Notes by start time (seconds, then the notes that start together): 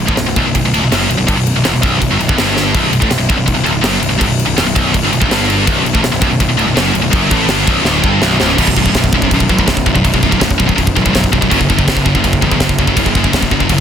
0.00 B0
0.07 A1 A2, kick
0.16 B0 B1, snare, crash
0.26 B0 B1
0.36 B0 B1, kick, crash
0.46 B0 B1
0.55 B0 B1, kick, crash
0.63 B0 B1
0.73 D1 D2, crash
0.82 B0 B1
0.91 F#1 F#2, snare, crash
1.09 B0 B1, crash
1.18 B0 B1
1.27 G1 G2, kick, crash
1.37 B0 B1
1.47 crash
1.56 B0 B1
1.64 E1 E2, snare, crash
1.73 B0 B1
1.82 B0 B1, kick, crash
2.00 B0 B1, kick, crash
2.11 G1 G2
2.19 B0 B1, crash
2.29 B0 B1, kick
2.38 G1 G2, snare, crash
2.57 snare
2.74 B0 B1, kick, crash
2.92 B0 B1, crash
3.01 A1 A2, kick
3.10 B0 B1, snare, crash
3.18 B0 B1
3.29 B0 B1, kick, crash
3.37 B0 B1
3.46 B0 B1, kick, crash
3.54 B0 B1
3.64 D1 D2, crash
3.72 B0 B1
3.81 F#1 F#2, snare, crash
4.00 B0 B1, crash
4.09 B0 B1
4.19 G1 G2, kick, crash
4.28 B0 B1
4.39 crash
4.46 B0 B1
4.57 E1 E2, snare, crash
4.65 B0 B1
4.75 B0 B1, kick, crash
4.94 B0 B1, kick, crash
5.03 G1 G2
5.12 B0 B1, crash
5.20 B0 B1, kick
5.29 G1 G2, snare, crash
5.50 crash
5.67 B0 B1, kick, crash
5.84 B0 B1, crash
5.94 A1 A2, kick
6.02 B0 B1, snare, crash
6.11 B0 B1
6.21 B0 B1, kick, crash
6.30 B0 B1
6.40 B0 B1, kick, crash
6.48 B0 B1
6.57 D1 D2, crash
6.66 B0 B1
6.75 F#1 F#2, snare, crash
6.93 B0 B1, crash
7.01 B0 B1
7.11 F#1 F#2, kick, crash
7.31 A1 A2, kick, crash
7.48 G1 G2, snare, crash
7.67 B0 B1, kick, crash
7.85 D1 D2, snare
8.03 G1 G2, kick
8.21 B0 B1, snare
8.40 C#1 C#2, snare
8.58 B0 B1 F#2 B2, kick, crash
8.67 B1 F#2, kick
8.77 B1 F#2, kick
8.86 B1 F#2, kick
8.94 B0 B1 F#2, kick, snare, crash
9.04 kick
9.13 B0 B1 F#2, kick
9.22 B1 F#2, kick
9.31 B0 B1 F#2, kick, crash
9.40 kick
9.49 A1 B1 F#2, kick
9.59 B1 F#2, kick
9.66 B0 B1 F#2, kick, snare, crash
9.77 kick
9.86 B0 B1 F#2, kick
9.94 B1 F#2, kick
10.04 B0 B1 F#2, kick, crash
10.14 B1 F#2, kick
10.23 B1 F#2, kick
10.31 B1 F#2, kick
10.40 B0 B1 F#2, kick, snare, crash
10.51 kick
10.58 B0 B1 F#2, kick
10.66 B1 F#2, kick
10.75 B0 B1 F#2, kick, crash
10.87 kick
10.95 A1 B1 F#2, kick
11.05 B1 F#2, kick
11.12 B0 B1 F#2, kick, snare, crash
11.24 kick
11.32 B0 B1 F#2, kick
11.41 B1 F#2, kick
11.50 F#1 F#2 C#3 F#3, kick, crash
11.58 F#2 C#3, kick
11.70 F#2 C#3, kick
11.78 F#2 C#3, kick
11.87 F#1 F#2 C#3, kick, snare, crash
11.97 kick
12.05 F#1 F#2 C#3, kick
12.15 F#2 C#3, kick
12.24 F#1 F#2 C#3, kick, crash
12.33 kick
12.41 E2 F#2 C#3, kick
12.51 F#2 C#3, kick
12.60 F#1 F#2 C#3, kick, snare, crash
12.69 kick
12.78 F#1 F#2 C#3, kick
12.87 F#2 C#3, kick
12.96 F#1 F#2 C#3, kick, crash
13.05 F#2 C#3, kick
13.15 F#2 C#3, kick
13.24 F#2 C#3, kick
13.33 F#1 F#2 C#3, kick, snare, crash
13.43 kick
13.51 F#1 F#2 C#3, kick
13.60 F#2 C#3, kick
13.69 F#1 F#2 C#3, kick, crash